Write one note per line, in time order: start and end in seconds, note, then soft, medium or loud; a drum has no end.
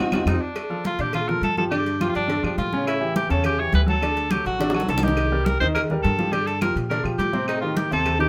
0.00 0.27 F#4 loud
0.12 0.23 F2 medium
0.12 0.22 C4 medium
0.12 0.22 D#4 medium
0.12 0.22 F4 medium
0.12 high bongo medium
0.12 high conga medium
0.12 claves loud
0.25 0.37 F2 medium
0.25 0.36 C4 medium
0.25 0.36 D#4 medium
0.25 0.43 D#4 medium
0.25 0.36 F4 medium
0.25 high bongo medium
0.25 high conga loud
0.25 claves medium
0.41 0.85 D4 medium
0.56 cowbell loud
0.56 high conga soft
0.56 claves medium
0.70 0.94 F3 medium
0.70 0.94 F4 medium
0.70 0.94 A4 medium
0.70 high conga soft
0.85 1.02 F4 medium
0.85 cowbell medium
0.85 high conga loud
0.99 1.39 A#2 medium
0.99 1.23 D3 medium
0.99 1.23 D4 medium
0.99 1.14 G4 medium
0.99 1.23 D5 medium
0.99 cowbell medium
1.13 1.30 F4 loud
1.13 cowbell loud
1.13 high conga soft
1.13 low conga medium
1.13 claves medium
1.28 1.52 F3 medium
1.28 1.52 F4 medium
1.28 1.53 A4 medium
1.28 1.43 A#4 medium
1.28 high conga soft
1.28 low conga medium
1.41 2.09 G2 medium
1.41 1.57 A4 loud
1.41 cowbell medium
1.41 high conga medium
1.57 1.69 F3 medium
1.57 1.69 F4 medium
1.57 1.70 G4 medium
1.57 1.64 A4 loud
1.57 high conga medium
1.71 1.95 D3 medium
1.71 1.95 D4 medium
1.71 2.03 G4 medium
1.71 1.95 D5 medium
1.71 cowbell medium
1.71 high conga soft
1.71 claves medium
1.86 cowbell medium
1.86 high conga soft
2.00 2.24 F3 medium
2.00 2.24 F4 medium
2.00 2.04 F4 medium
2.00 2.25 G4 medium
2.00 2.10 G4 medium
2.00 cowbell medium
2.00 high conga medium
2.00 claves medium
2.09 2.15 F4 medium
2.14 2.42 G2 medium
2.14 2.42 D4 loud
2.14 cowbell medium
2.14 high conga soft
2.28 2.40 D3 medium
2.28 2.40 D4 medium
2.28 2.40 D5 medium
2.28 cowbell loud
2.28 high conga soft
2.43 2.57 G2 medium
2.43 2.67 F3 medium
2.43 2.57 D4 medium
2.43 2.67 F4 medium
2.43 2.67 G4 medium
2.43 high conga soft
2.43 claves medium
2.58 3.25 A2 loud
2.58 2.85 F4 loud
2.58 cowbell medium
2.58 high conga medium
2.73 2.96 C#3 medium
2.73 2.97 C#4 loud
2.73 2.97 C#5 loud
2.73 high conga medium
2.87 3.14 E4 loud
2.87 cowbell loud
2.87 high conga soft
2.87 claves medium
3.01 3.25 E3 medium
3.01 3.25 E4 medium
3.01 3.25 G4 medium
3.01 high conga soft
3.16 3.29 G4 loud
3.16 cowbell medium
3.16 high conga loud
3.29 3.70 E2 loud
3.29 3.53 C#3 medium
3.29 3.53 C#4 medium
3.29 3.44 A4 loud
3.29 3.54 C#5 medium
3.29 cowbell medium
3.44 3.61 G4 loud
3.44 cowbell loud
3.44 high conga soft
3.44 low conga medium
3.44 claves medium
3.59 3.83 E3 medium
3.59 3.83 E4 medium
3.59 3.83 G4 medium
3.59 3.74 C#5 loud
3.59 high conga soft
3.73 4.40 D2 loud
3.73 3.81 B4 loud
3.73 cowbell medium
3.73 high conga medium
3.86 3.99 F#3 medium
3.86 3.99 F#4 medium
3.86 4.00 A4 medium
3.86 4.33 A4 loud
3.86 high conga medium
4.02 4.26 D3 medium
4.02 4.26 D4 medium
4.02 4.26 D5 medium
4.02 cowbell loud
4.02 high conga soft
4.02 claves medium
4.16 cowbell medium
4.16 high conga soft
4.30 4.54 F#3 medium
4.30 4.54 F#4 medium
4.30 4.46 G4 loud
4.30 4.55 A4 medium
4.30 cowbell medium
4.30 high conga loud
4.30 claves medium
4.45 4.86 A1 medium
4.45 4.73 F#4 loud
4.45 cowbell medium
4.45 high conga soft
4.59 4.71 D3 medium
4.59 4.72 D4 medium
4.59 4.72 D5 medium
4.59 cowbell loud
4.59 high bongo medium
4.59 high conga soft
4.70 4.97 F#3 medium
4.70 4.98 F#4 medium
4.70 high bongo loud
4.74 4.88 F#4 medium
4.74 4.98 A4 medium
4.74 high conga soft
4.74 claves medium
4.80 low bongo medium
4.88 5.55 C2 medium
4.88 5.05 A4 medium
4.88 cowbell medium
4.88 low bongo loud
4.88 high conga loud
4.98 low bongo loud
5.03 5.27 D#3 medium
5.03 5.27 D#4 medium
5.03 5.47 G4 medium
5.03 5.27 D#5 medium
5.03 high conga medium
5.08 low bongo medium
5.17 cowbell loud
5.17 claves medium
5.32 5.56 G3 medium
5.32 5.56 G4 medium
5.32 5.56 A#4 medium
5.32 high conga soft
5.45 5.60 A#4 loud
5.45 cowbell medium
5.45 high conga loud
5.60 6.01 D#2 medium
5.60 5.85 D#3 medium
5.60 5.85 D#4 medium
5.60 5.67 C5 loud
5.60 5.85 D#5 medium
5.60 cowbell medium
5.75 5.81 A#4 loud
5.75 cowbell loud
5.75 high conga soft
5.75 low conga medium
5.75 claves medium
5.90 6.14 G3 medium
5.90 6.14 G4 medium
5.90 6.14 A#4 medium
5.90 high conga soft
5.90 low conga medium
6.03 6.71 G2 loud
6.03 6.34 A4 loud
6.03 cowbell medium
6.03 high conga loud
6.18 6.30 F3 medium
6.18 6.31 F4 medium
6.18 6.31 G4 medium
6.18 high conga medium
6.32 6.56 D3 medium
6.32 6.56 D4 medium
6.32 6.48 G4 loud
6.32 6.56 D5 medium
6.32 cowbell loud
6.32 high conga soft
6.32 claves medium
6.47 6.61 A4 medium
6.47 cowbell medium
6.47 high conga soft
6.61 6.85 F3 medium
6.61 6.86 F4 medium
6.61 6.86 G4 medium
6.61 6.75 A#4 loud
6.61 cowbell medium
6.61 high conga loud
6.61 claves medium
6.75 7.03 A#2 medium
6.75 cowbell medium
6.75 high conga soft
6.90 7.02 D3 medium
6.90 7.02 D4 loud
6.90 7.03 A#4 medium
6.90 7.03 D5 medium
6.90 cowbell loud
6.90 high conga soft
7.03 7.18 A#2 medium
7.03 7.28 F3 medium
7.03 7.28 F4 medium
7.03 7.28 G4 medium
7.03 high conga soft
7.03 claves medium
7.18 7.85 A2 medium
7.18 7.46 G4 medium
7.18 cowbell medium
7.18 high conga loud
7.33 7.57 C3 medium
7.33 7.57 C4 medium
7.33 7.57 C5 medium
7.33 high conga medium
7.47 7.60 D#4 medium
7.47 cowbell loud
7.47 high conga soft
7.47 claves medium
7.61 7.86 D#3 medium
7.61 7.86 D#4 medium
7.61 7.77 F4 medium
7.61 7.86 G4 medium
7.61 high conga soft
7.76 7.91 G4 medium
7.76 cowbell medium
7.76 high conga loud
7.91 8.29 D#2 loud
7.91 8.15 C3 medium
7.91 8.15 C4 medium
7.91 8.19 A4 loud
7.91 8.15 C5 medium
7.91 cowbell medium
8.06 cowbell loud
8.06 high conga soft
8.06 low conga medium
8.06 claves medium
8.19 8.29 D#3 medium
8.19 8.29 D#4 medium
8.19 8.29 G4 medium
8.19 8.29 G4 loud
8.19 high conga soft
8.19 low conga medium